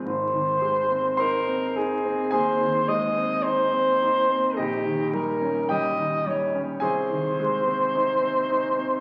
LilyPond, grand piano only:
\new Staff \with { instrumentName = "Grand piano" } { \time 4/4 \key aes \major \tempo 4 = 53 << { r4 <c'' c'''>4 <aes' aes''>2 | <ees' ees''>4 <g' g''>4 <aes' aes''>4. r8 | } \\ { aes,,16 ees16 aes16 c'16 ees'16 c'16 ees'16 c'16 ees,16 ees16 aes16 c'16 ees'16 c'16 ees'16 c'16 | bes,,16 ees16 g16 des'16 g16 ees16 g16 des'16 c,16 ees16 aes16 c'16 ees'16 c'16 ees'16 c'16 | } >> }